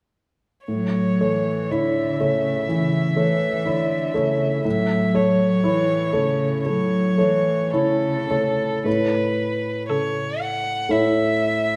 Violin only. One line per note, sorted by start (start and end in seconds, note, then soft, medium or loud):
0.67 1.73 C#5 soft
1.72 4.65 E5 soft
4.66 5.17 E5 soft
5.15 6.65 C#5 soft
6.65 7.71 C#5 soft
7.75 8.83 A4 soft
8.87 9.87 B4 soft
9.89 10.42 C#5 soft
10.41 10.93 F#5 medium
10.91 11.76 E5 soft